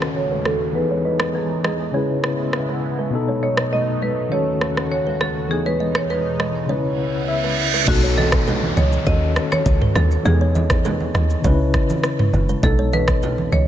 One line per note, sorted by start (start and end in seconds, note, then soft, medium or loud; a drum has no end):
0.00 0.74 D#2 medium
0.00 0.74 C#3 medium
0.00 0.71 D#3 medium
0.00 0.73 A3 medium
0.00 0.72 C#4 medium
0.00 0.73 F#4 medium
0.00 0.74 F#4 medium
0.00 0.74 A4 medium
0.00 0.14 C#5 medium
0.00 cross-stick medium
0.00 downlifter medium
0.16 0.46 C#5 loud
0.31 0.39 B4 medium
0.45 0.59 A4 medium
0.45 0.53 A4 medium
0.45 cross-stick medium
0.72 1.93 E2 medium
0.72 1.90 E3 medium
0.72 1.93 E3 medium
0.72 1.93 G#3 medium
0.72 1.91 B3 medium
0.72 1.93 D#4 medium
0.72 1.92 D#4 medium
0.72 1.04 B4 medium
0.77 1.93 G#4 medium
0.91 0.98 C#5 medium
1.05 1.32 B4 medium
1.05 1.13 D#5 medium
1.20 cross-stick loud
1.35 1.62 G#4 medium
1.35 1.42 B4 medium
1.64 1.92 G#4 medium
1.64 1.72 D#5 medium
1.64 cross-stick loud
1.91 3.09 C#3 medium
1.91 3.11 C#3 medium
1.91 3.11 G#3 medium
1.91 3.12 B3 medium
1.91 3.10 C#4 medium
1.91 3.12 E4 medium
1.91 3.11 E4 medium
1.91 2.79 G#4 medium
1.91 2.09 C#5 medium
1.96 3.12 B4 medium
2.24 cross-stick loud
2.53 cross-stick medium
2.69 2.76 B4 medium
2.99 3.06 B4 medium
3.10 4.28 B2 medium
3.10 4.30 B2 medium
3.10 4.30 F#3 medium
3.10 5.48 A3 medium
3.10 4.29 B3 medium
3.10 4.30 D#4 medium
3.10 4.29 D#4 medium
3.15 4.30 A4 medium
3.28 3.36 C#5 medium
3.43 3.73 C#5 medium
3.43 3.50 D#5 medium
3.57 cross-stick loud
3.72 3.80 B4 medium
3.72 4.03 D#5 loud
4.02 4.33 B4 medium
4.02 4.10 D#5 medium
4.29 5.49 D#2 medium
4.29 5.49 C#3 medium
4.29 5.47 D#3 medium
4.29 5.47 C#4 medium
4.29 5.49 F#4 medium
4.29 5.48 F#4 medium
4.29 4.90 C#5 medium
4.29 4.47 C#5 medium
4.34 5.49 A4 medium
4.61 cross-stick medium
4.77 cross-stick medium
4.92 5.22 C#5 medium
5.07 5.14 B4 medium
5.21 5.29 A4 medium
5.21 5.51 A4 medium
5.21 cross-stick medium
5.48 6.68 E2 medium
5.48 6.68 B2 medium
5.48 6.65 E3 medium
5.48 6.68 G#3 medium
5.48 6.66 B3 medium
5.48 6.68 D#4 medium
5.48 6.67 D#4 medium
5.48 5.58 G#4 medium
5.53 6.68 G#4 medium
5.66 5.97 B4 medium
5.66 5.73 C#5 medium
5.80 5.88 D#5 medium
5.95 6.09 C#5 medium
5.95 cross-stick loud
6.10 6.18 B4 medium
6.10 7.55 B4 medium
6.40 6.47 D#5 medium
6.40 cross-stick loud
6.67 7.87 C#2 medium
6.67 7.84 C#3 medium
6.67 7.87 C#3 medium
6.67 7.87 B3 medium
6.67 7.85 C#4 medium
6.67 6.76 D#4 soft
6.67 7.87 E4 medium
6.67 6.84 C#5 medium
6.67 reverse cymbal medium
6.72 7.87 B4 medium
6.76 7.89 E4 medium
7.28 7.84 E5 medium
7.44 7.51 B4 medium
7.74 7.81 B4 medium
7.85 8.73 B1 loud
7.85 9.03 B2 medium
7.85 9.04 B3 medium
7.85 9.05 D#4 medium
7.85 8.19 F#4 loud
7.85 kick loud
7.85 crash medium
7.85 downlifter medium
7.85 low conga medium
7.85 shaker medium
7.90 9.05 A4 medium
8.03 8.18 C#5 medium
8.17 8.73 A4 medium
8.17 8.26 D#5 medium
8.17 high conga medium
8.17 shaker medium
8.32 kick medium
8.32 cross-stick loud
8.32 shaker medium
8.47 8.55 B4 medium
8.47 low conga medium
8.47 shaker medium
8.63 high conga medium
8.77 8.98 C#2 medium
8.77 9.05 C#5 medium
8.77 8.85 D#5 medium
8.77 high conga medium
8.77 shaker medium
8.92 shaker medium
9.04 9.39 D#2 loud
9.04 10.22 D#3 medium
9.04 10.23 C#4 medium
9.04 10.23 F#4 medium
9.04 9.22 C#5 medium
9.04 9.53 D#5 loud
9.04 kick medium
9.04 low conga medium
9.04 shaker medium
9.09 10.24 A4 medium
9.36 cross-stick loud
9.36 shaker medium
9.52 9.97 C#5 loud
9.52 cross-stick medium
9.52 high conga medium
9.52 shaker medium
9.66 9.87 C#2 medium
9.66 kick loud
9.66 shaker medium
9.81 9.89 B4 medium
9.81 mid tom medium
9.96 10.17 D#2 loud
9.96 10.09 A4 medium
9.96 10.04 A4 medium
9.96 cross-stick medium
9.96 high conga medium
9.96 low conga medium
9.96 shaker medium
10.11 shaker medium
10.23 11.10 E2 loud
10.23 11.41 E3 medium
10.23 11.42 B3 medium
10.23 11.42 D#4 medium
10.23 12.29 G#4 medium
10.23 low conga medium
10.23 shaker medium
10.28 10.33 G4 medium
10.35 11.47 G#4 medium
10.41 10.48 C#5 medium
10.55 10.63 D#5 medium
10.55 high conga medium
10.55 shaker medium
10.70 kick medium
10.70 cross-stick loud
10.70 shaker medium
10.85 10.93 B4 medium
10.85 low conga medium
10.85 shaker medium
11.01 high conga medium
11.15 11.36 D#2 medium
11.15 11.23 D#5 medium
11.15 cross-stick loud
11.15 high conga medium
11.15 shaker medium
11.30 shaker medium
11.42 11.77 C#2 loud
11.42 12.59 C#3 medium
11.42 12.60 C#4 medium
11.42 11.51 D#4 medium
11.42 11.60 C#5 medium
11.42 kick medium
11.42 low conga medium
11.42 shaker medium
11.47 12.62 B4 medium
11.52 12.64 E4 medium
11.74 kick loud
11.74 cross-stick loud
11.74 shaker medium
11.90 high conga medium
11.90 shaker medium
12.03 cross-stick loud
12.03 shaker medium
12.19 12.27 B4 medium
12.19 mid tom medium
12.33 12.55 F#1 medium
12.33 high conga medium
12.33 low conga medium
12.33 shaker medium
12.49 12.56 B4 medium
12.49 shaker medium
12.61 13.48 B1 loud
12.61 13.68 B2 medium
12.61 13.68 B3 medium
12.61 13.68 D#4 medium
12.61 12.94 A4 medium
12.61 kick loud
12.61 low conga medium
12.61 shaker medium
12.66 13.68 A4 medium
12.79 12.86 C#5 medium
12.93 13.54 B4 loud
12.93 13.01 D#5 medium
12.93 high conga medium
12.93 shaker medium
13.08 kick medium
13.08 cross-stick loud
13.08 shaker medium
13.23 13.31 B4 medium
13.23 low conga medium
13.23 shaker medium
13.38 high conga medium
13.52 13.68 C#2 medium
13.52 13.68 C#5 loud
13.52 13.60 D#5 medium
13.52 high conga medium
13.52 shaker medium